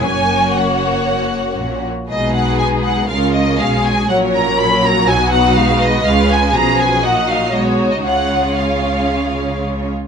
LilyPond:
<<
  \new Staff \with { instrumentName = "Violin section" } { \time 4/4 \key fis \mixolydian \tempo 4 = 120 gis''4 fis''2~ fis''8 r8 | \key cis \mixolydian dis''8 fis''8 gis''8 fis''8 eis''8 dis''8 eis''8 gis''8 | fis''8 ais''8 b''8 ais''8 gis''8 fis''8 eis''8 dis''8 | eis''8 gis''8 ais''8 gis''8 fis''8 eis''8 dis''16 cis''8 dis''16 |
fis''4 eis''2 r4 | }
  \new Staff \with { instrumentName = "Violin section" } { \time 4/4 \key fis \mixolydian << { cis''2.~ cis''8 r8 | \key cis \mixolydian b'2 ais'4 gis'4 | cis''4 cis''4 b'2~ | b'2 dis''4 cis''4 |
cis''2.~ cis''8 r8 | } \\ { fis'2.~ fis'8 r8 | gis'2 eis'4 gis'4 | ais'2 fis'2 | eis'4 gis'4 fis'4 fis'4 |
eis'2.~ eis'8 r8 | } >> }
  \new Staff \with { instrumentName = "Viola section" } { \time 4/4 \key fis \mixolydian << { cis'2.~ cis'8 r8 | \key cis \mixolydian dis'2 cis'2 | cis'2 dis'2 | cis'4 cis'4 dis'4 dis'4 |
cis'2.~ cis'8 r8 | } \\ { ais2.~ ais8 r8 | gis2 gis4 gis4 | fis4 fis2 gis4 | gis4 eis4 fis4 gis4 |
gis2.~ gis8 r8 | } >> }
  \new Staff \with { instrumentName = "Cello section" } { \clef bass \time 4/4 \key fis \mixolydian fis,2. ais,8 r8 | \key cis \mixolydian b,2 cis4 b,4 | ais,2 b,2 | cis4 b,4 ais,4 b,4 |
cis2.~ cis8 r8 | }
  \new Staff \with { instrumentName = "Double bass section" } { \clef bass \time 4/4 \key fis \mixolydian fis,,2. ais,,8 r8 | \key cis \mixolydian b,,2 cis,4 b,,4 | ais,,2 b,,2 | cis,4 b,,4 ais,,4 b,,4 |
cis,2.~ cis,8 r8 | }
>>